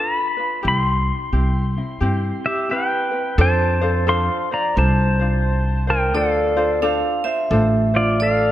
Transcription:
0.00 0.38 D4 medium
0.00 0.38 F4 medium
0.00 0.38 A4 soft
0.00 0.36 B4 medium
0.00 0.68 B5 medium
0.37 0.63 D4 soft
0.37 0.63 F4 soft
0.37 0.63 B4 soft
0.63 1.09 C2 medium
0.63 1.32 C4 medium
0.63 1.33 E4 medium
0.63 1.31 G4 medium
0.68 2.68 C6 medium
1.33 1.77 C2 medium
1.33 1.76 C4 medium
1.33 1.76 E4 medium
1.33 1.76 G4 medium
1.78 2.01 C4 soft
1.78 2.01 E4 soft
2.00 2.29 G2 medium
2.00 2.70 C4 medium
2.00 2.70 E4 medium
2.00 2.68 G4 medium
2.46 2.70 G4 soft
2.46 2.71 E5 medium
2.69 3.12 C4 medium
2.69 3.10 E4 medium
2.69 3.13 G4 medium
2.69 3.10 B4 medium
2.69 3.36 B4 medium
2.69 3.41 G5 medium
3.11 3.38 C4 soft
3.11 3.38 E4 soft
3.11 3.38 B4 soft
3.38 4.28 F2 loud
3.38 3.81 D4 medium
3.38 3.80 F4 medium
3.38 3.81 A4 medium
3.38 3.80 C5 medium
3.38 6.22 C5 medium
3.38 4.05 C5 medium
3.38 4.11 A5 medium
3.81 4.06 D4 medium
3.81 4.07 F4 medium
3.81 4.06 A4 medium
3.81 4.07 C5 medium
4.07 4.50 D4 medium
4.07 4.51 F4 medium
4.07 4.50 A4 medium
4.07 4.50 C5 medium
4.07 4.48 F5 medium
4.07 4.52 C6 loud
4.51 4.76 D4 soft
4.51 4.76 F4 soft
4.51 4.77 C5 medium
4.51 4.76 D5 medium
4.51 4.78 A#5 medium
4.76 6.13 C2 loud
4.76 5.19 D4 medium
4.76 5.19 F4 medium
4.76 5.19 A4 medium
4.76 5.18 C5 medium
4.76 5.84 C5 medium
4.76 5.90 A5 loud
5.19 5.89 D4 soft
5.19 5.88 F4 soft
5.19 5.87 C5 medium
5.87 6.13 D4 soft
5.87 6.13 F4 soft
5.87 6.13 A#4 medium
5.87 6.13 C5 medium
5.87 6.15 G5 medium
6.13 7.02 D2 loud
6.13 6.56 D4 medium
6.13 6.56 F4 medium
6.13 6.56 A4 medium
6.13 6.55 C5 medium
6.13 6.84 D5 medium
6.17 6.80 A4 medium
6.17 6.80 F5 medium
6.57 6.81 D4 medium
6.57 6.82 F4 medium
6.57 6.81 A4 medium
6.57 6.82 C5 medium
6.82 7.25 D4 medium
6.82 7.25 F4 medium
6.82 7.25 A4 medium
6.82 7.23 C5 medium
6.82 7.26 F5 medium
7.24 7.50 D4 soft
7.24 7.51 F4 medium
7.24 7.50 C5 medium
7.24 8.21 E5 loud
7.51 8.52 A1 loud
7.51 7.93 D4 medium
7.51 7.93 F4 medium
7.51 7.93 A4 medium
7.51 7.93 C5 medium
7.94 8.52 D4 soft
7.94 8.52 F4 soft
7.94 8.19 F4 medium
7.94 8.52 C5 medium
7.94 8.21 D5 medium
8.20 8.52 A4 medium
8.20 8.52 D5 loud
8.20 8.52 F5 medium

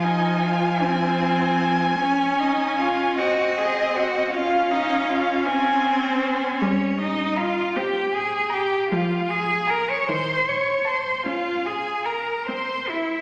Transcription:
0.00 1.96 F3 medium
0.00 0.45 D#4 medium
0.00 0.46 D#5 medium
0.00 3.14 G#5 medium
0.44 0.85 F4 medium
0.44 0.84 F5 medium
0.83 1.99 C4 medium
0.83 2.02 C5 medium
2.00 2.41 C#4 medium
2.00 3.19 C#4 medium
2.00 2.41 C#5 medium
2.39 2.79 D#4 medium
2.39 2.77 D#5 medium
2.78 3.20 F4 medium
2.78 3.17 F5 medium
3.17 4.32 C4 medium
3.17 3.59 F#4 medium
3.17 4.31 D#5 medium
3.17 3.58 F#5 medium
3.57 3.98 G#4 medium
3.57 3.97 G#5 medium
3.96 4.33 F#4 medium
3.96 4.33 F#5 medium
4.32 6.58 C#4 medium
4.32 4.73 F4 medium
4.32 5.44 F5 medium
4.32 4.72 F5 medium
4.71 5.11 D#4 medium
4.71 5.11 D#5 medium
5.09 5.49 F4 medium
5.09 5.47 F5 medium
5.46 6.63 C4 medium
5.46 6.60 C5 medium
5.46 6.59 G#5 medium
6.60 7.55 G3 medium
6.60 6.99 C#4 medium
6.60 7.00 C#5 medium
6.98 7.40 D#4 medium
6.98 7.38 D#5 medium
7.36 7.78 F4 medium
7.36 7.74 F5 medium
7.36 7.65 A#5 medium
7.75 8.70 C4 medium
7.75 8.16 G4 medium
7.75 8.14 G5 medium
8.12 8.55 G#4 medium
8.12 8.50 G#5 medium
8.50 8.91 G4 medium
8.50 8.88 G5 medium
8.50 8.80 A#5 medium
8.89 9.87 F3 medium
8.89 9.32 F4 medium
8.89 9.30 F5 medium
9.28 9.71 G#4 medium
9.28 9.67 G#5 medium
9.67 9.92 A#4 medium
9.67 9.97 G#5 medium
9.67 9.90 A#5 medium
9.88 10.09 C#5 medium
9.88 10.10 C#6 medium
10.08 11.04 D#3 medium
10.08 10.50 C5 medium
10.08 10.50 C6 medium
10.48 10.89 C#5 medium
10.48 10.88 C#6 medium
10.85 11.26 C5 medium
10.85 11.15 A5 medium
10.85 11.26 C6 medium
11.26 12.25 C#4 medium
11.26 11.68 F4 medium
11.26 11.66 F5 medium
11.65 12.08 G#4 medium
11.65 12.08 G#5 medium
12.06 12.48 A#4 medium
12.06 12.36 A#5 medium
12.06 12.46 A#5 medium
12.46 13.21 C4 medium
12.46 12.90 C5 medium
12.46 12.91 C6 medium
12.89 13.21 E4 medium
12.89 13.21 E5 medium

